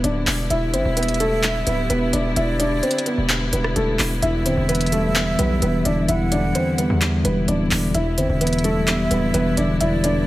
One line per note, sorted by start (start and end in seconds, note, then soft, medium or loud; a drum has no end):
0.00 0.26 D1 loud
0.00 7.91 D3 medium
0.00 7.91 G3 medium
0.00 7.91 B3 medium
0.00 7.91 E4 medium
0.00 0.48 D5 medium
0.00 closed hi-hat medium
0.05 0.48 D4 medium
0.27 0.49 E1 loud
0.27 clap loud
0.27 open hi-hat medium
0.50 0.75 E1 loud
0.50 0.71 E4 medium
0.50 0.70 E5 medium
0.50 2.32 E5 loud
0.50 closed hi-hat medium
0.74 0.85 G1 loud
0.74 0.94 C4 medium
0.74 0.94 C5 medium
0.74 closed hi-hat medium
0.85 1.63 E1 loud
0.97 1.17 B3 medium
0.97 1.17 B4 medium
0.97 closed hi-hat medium
1.03 closed hi-hat medium
1.08 closed hi-hat medium
1.14 closed hi-hat soft
1.20 1.41 A3 medium
1.20 1.40 A4 loud
1.20 closed hi-hat medium
1.43 clap loud
1.43 closed hi-hat medium
1.67 1.89 D1 loud
1.67 1.87 B3 medium
1.67 1.87 B4 medium
1.67 closed hi-hat medium
1.90 2.12 E1 loud
1.90 2.10 B3 medium
1.90 2.10 B4 medium
1.90 closed hi-hat medium
2.13 2.35 E1 loud
2.13 2.34 D4 medium
2.13 2.33 D5 medium
2.13 closed hi-hat loud
2.36 2.81 E1 loud
2.36 2.57 E4 medium
2.36 3.25 D5 loud
2.36 2.57 E5 medium
2.36 closed hi-hat medium
2.60 2.80 D4 medium
2.60 2.80 D5 medium
2.60 closed hi-hat medium
2.83 3.03 C4 medium
2.83 3.03 C5 medium
2.83 closed hi-hat soft
2.91 closed hi-hat medium
2.98 closed hi-hat medium
3.06 3.27 B3 medium
3.06 3.26 B4 medium
3.06 closed hi-hat medium
3.18 3.51 E1 loud
3.29 clap loud
3.29 closed hi-hat medium
3.53 3.75 E1 loud
3.53 3.73 B3 medium
3.53 3.73 B4 medium
3.53 closed hi-hat medium
3.64 cross-stick medium
3.76 3.98 E1 loud
3.76 3.97 A3 medium
3.76 3.96 A4 medium
3.76 closed hi-hat medium
3.99 4.22 E1 loud
3.99 clap loud
3.99 open hi-hat medium
4.22 4.47 E1 loud
4.22 5.39 E2 medium
4.22 4.43 E4 medium
4.22 6.04 E5 loud
4.22 4.43 E5 loud
4.22 closed hi-hat medium
4.46 4.57 D1 loud
4.46 5.62 D3 medium
4.46 4.66 C4 medium
4.46 4.66 C5 medium
4.46 closed hi-hat medium
4.57 5.35 E1 loud
4.69 5.61 E3 medium
4.69 4.89 B3 medium
4.69 4.89 B4 loud
4.69 closed hi-hat medium
4.75 closed hi-hat medium
4.81 closed hi-hat medium
4.86 closed hi-hat soft
4.92 5.38 G3 medium
4.92 5.13 A3 medium
4.92 5.12 A4 medium
4.92 closed hi-hat medium
5.16 6.32 B3 medium
5.16 clap loud
5.16 closed hi-hat medium
5.39 5.61 B1 loud
5.39 6.55 G3 medium
5.39 5.59 B3 medium
5.39 5.59 B4 medium
5.39 closed hi-hat medium
5.62 5.84 E1 loud
5.62 6.54 E3 loud
5.62 5.83 B3 medium
5.62 5.82 B4 medium
5.62 closed hi-hat medium
5.85 6.08 E1 loud
5.85 6.31 D3 medium
5.85 6.06 D4 medium
5.85 6.05 D5 medium
5.85 closed hi-hat medium
6.08 6.53 E1 loud
6.08 7.25 E2 medium
6.08 6.29 E4 medium
6.08 6.29 E5 medium
6.08 6.97 F#5 loud
6.08 closed hi-hat medium
6.32 7.48 D3 medium
6.32 6.52 D4 medium
6.32 6.52 D5 medium
6.32 closed hi-hat medium
6.55 7.47 E3 medium
6.55 6.76 C4 medium
6.55 6.75 C5 medium
6.55 closed hi-hat medium
6.78 7.24 G3 medium
6.78 7.22 B3 medium
6.78 7.22 B4 medium
6.78 closed hi-hat medium
6.90 7.23 E2 loud
7.01 7.95 B3 medium
7.01 clap loud
7.01 closed hi-hat medium
7.25 7.47 E1 loud
7.25 7.95 G3 medium
7.25 7.45 B3 medium
7.25 7.45 B4 medium
7.25 closed hi-hat medium
7.48 7.70 D1 loud
7.48 7.95 E3 medium
7.48 7.92 D4 medium
7.48 7.92 D5 medium
7.48 closed hi-hat medium
7.71 7.94 E1 loud
7.71 7.95 D3 medium
7.71 clap loud
7.71 open hi-hat medium
7.95 8.19 E1 loud
7.95 9.11 E2 medium
7.95 10.27 D3 medium
7.95 10.27 G3 medium
7.95 10.27 B3 medium
7.95 10.27 E4 medium
7.95 8.15 E4 medium
7.95 8.15 E5 medium
7.95 9.77 E5 loud
7.95 closed hi-hat medium
8.18 8.29 G1 loud
8.18 9.34 D3 medium
8.18 8.38 C4 medium
8.18 8.38 C5 medium
8.18 closed hi-hat medium
8.29 9.08 E1 loud
8.41 9.33 E3 medium
8.41 8.62 B3 medium
8.41 8.61 B4 medium
8.41 closed hi-hat medium
8.47 closed hi-hat medium
8.53 closed hi-hat medium
8.58 closed hi-hat soft
8.64 9.10 G3 loud
8.64 8.85 A3 medium
8.64 8.84 A4 medium
8.64 closed hi-hat medium
8.88 10.04 B3 medium
8.88 clap loud
8.88 closed hi-hat medium
9.11 9.33 D1 loud
9.11 10.27 G3 medium
9.11 9.31 B3 medium
9.11 9.31 B4 medium
9.11 closed hi-hat medium
9.34 9.56 E1 loud
9.34 10.26 E3 loud
9.34 9.55 B3 medium
9.34 9.54 B4 loud
9.34 closed hi-hat medium
9.57 9.80 E1 loud
9.57 10.03 D3 medium
9.57 9.78 D4 medium
9.57 9.77 D5 medium
9.57 closed hi-hat medium
9.80 10.25 E1 loud
9.80 10.27 E2 medium
9.80 10.01 E4 medium
9.80 10.27 D5 loud
9.80 10.01 E5 medium
9.80 closed hi-hat medium
10.04 10.27 D3 medium
10.04 10.24 D4 medium
10.04 10.24 D5 medium
10.04 closed hi-hat medium